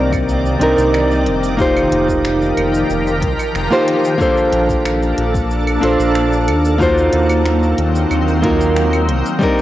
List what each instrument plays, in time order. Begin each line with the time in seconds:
Already playing: analog synth bass C2, ambient pad C3 D#3 A#3 D5, nylon-string guitar G3 C4 D4 D#4 A#4
0.12 kick, claves, shaker
0.29 shaker
0.46 shaker
0.58 analog synth bass C2, nylon-string guitar G3 C4 D4 D#4, closed hi-hat
0.63 nylon-string guitar A#4
0.78 analog synth bass C2, shaker
0.94 finger snap, claves, shaker
1.11 shaker
1.26 analog synth bass F1, closed hi-hat
1.43 shaker
1.57 ambient pad F3 G4 A#4, nylon-string guitar A#3 D#4 F4 G4, kick, shaker
1.61 nylon-string guitar C5
1.76 claves, shaker
1.91 analog synth bass F1, closed hi-hat
2.08 kick, shaker
2.25 finger snap, shaker
2.42 shaker
2.57 analog synth bass F1, closed hi-hat, claves
2.74 shaker
2.90 analog synth bass F1, shaker
3.07 shaker
3.22 analog synth bass C2, kick, closed hi-hat
3.39 claves, shaker
3.55 analog synth bass F1, finger snap, shaker
3.70 nylon-string guitar A#3 D#4 F4 G4 C5, shaker
3.88 closed hi-hat
4.05 shaker
4.18 nylon-string guitar A#3 D4 F4 A4, ambient pad A#3 D4 A4, kick, shaker
4.22 nylon-string guitar C5
4.37 shaker
4.53 analog synth bass A#1, closed hi-hat
4.69 kick, shaker
4.86 finger snap, claves, shaker
5.03 shaker
5.18 analog synth bass A#1, closed hi-hat
5.34 kick, shaker
5.51 shaker
5.67 claves, shaker
5.80 analog synth bass A#1, nylon-string guitar A#3 D4 F4 A4, closed hi-hat
5.85 nylon-string guitar C5
5.99 analog synth bass A#1, shaker
6.15 finger snap, shaker
6.32 shaker
6.48 analog synth bass D#2, closed hi-hat, claves
6.65 shaker
6.78 ambient pad D#3 F#3 C4, nylon-string guitar A#3 D#4 F4 F#4, kick, shaker
6.83 nylon-string guitar C5
6.98 shaker
7.13 analog synth bass D#2, closed hi-hat
7.30 claves, shaker
7.46 finger snap, shaker
7.63 shaker
7.78 analog synth bass D#2, closed hi-hat
7.95 shaker
8.11 analog synth bass D#2, claves, shaker
8.28 shaker
8.42 nylon-string guitar A#3 D#4 F4 F#4 A#4, kick, closed hi-hat
8.61 shaker
8.76 finger snap, shaker
8.93 claves, shaker
9.09 analog synth bass C2, ambient pad C3 D#3 D5, closed hi-hat
9.26 shaker
9.39 nylon-string guitar G3 C4 D4 D#4, kick, shaker
9.43 nylon-string guitar A#4